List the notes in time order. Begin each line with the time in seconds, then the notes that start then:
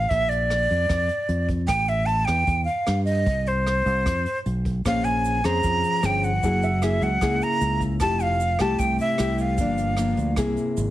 Already playing: F5
0.09 A#1 E5, kick, closed hi-hat
0.29 D5, closed hi-hat
0.50 cross-stick, closed hi-hat
0.71 F2, closed hi-hat
0.89 F2, kick, cross-stick, closed hi-hat
1.09 closed hi-hat
1.29 F2, closed hi-hat
1.49 kick, closed hi-hat
1.67 A1 G5, kick, cross-stick, closed hi-hat
1.88 E5, closed hi-hat
2.06 A5, closed hi-hat
2.25 E2 G5, cross-stick, closed hi-hat
2.47 E2, kick, closed hi-hat
2.65 F5, closed hi-hat
2.87 G2, cross-stick, closed hi-hat
3.05 D#5, closed hi-hat
3.26 C2, kick, closed hi-hat
3.46 C5, closed hi-hat
3.67 cross-stick, closed hi-hat
3.86 C2, closed hi-hat
4.06 F2, kick, cross-stick, closed hi-hat
4.26 closed hi-hat
4.46 B1, closed hi-hat
4.65 kick, closed hi-hat
4.85 A#1 A#3 C#4 G#4 C5 F5, kick, cross-stick, closed hi-hat, shaker
5.04 G#5, closed hi-hat, shaker
5.25 closed hi-hat, shaker
5.44 F2 C#4 G#4 C5 A#5, cross-stick, closed hi-hat, shaker
5.63 F2 F3, kick, closed hi-hat, shaker
5.84 closed hi-hat, shaker
6.03 G1 C#4 G#4 C5 G5, cross-stick, closed hi-hat, shaker
6.23 F#5, closed hi-hat, shaker
6.43 F#1 F#3 A#3 E4 G#4, kick, closed hi-hat, shaker
6.62 E5, closed hi-hat, shaker
6.82 A#3 E4 G#4 E5, cross-stick, closed hi-hat, shaker
7.01 C#2 F#5, closed hi-hat, shaker
7.21 C#2 C#3 A#3 E4 G#4, kick, cross-stick, closed hi-hat, shaker
7.41 A#5, closed hi-hat, shaker
7.61 C#2, closed hi-hat, shaker
7.80 kick, closed hi-hat, shaker
8.00 F1 F3 A3 E4 G4 A5, kick, cross-stick, closed hi-hat, shaker
8.20 F5, closed hi-hat, shaker
8.40 closed hi-hat, shaker
8.59 C2 A3 E4 G4 A5, cross-stick, closed hi-hat, shaker
8.78 C2 C3 G5, kick, closed hi-hat, shaker
8.98 E5, closed hi-hat, shaker
9.18 C2 A3 E4 G4, cross-stick, closed hi-hat, shaker
9.38 F5, closed hi-hat, shaker
9.58 G1 G2 F3 A#3 D4, kick, closed hi-hat, shaker
9.77 closed hi-hat, shaker
9.97 F3 A#3 D4, cross-stick, closed hi-hat, shaker
10.17 D2, closed hi-hat, shaker
10.36 C2 C3 A#3 E4 G#4, kick, cross-stick, closed hi-hat, shaker
10.56 closed hi-hat, shaker
10.77 G#1, closed hi-hat, shaker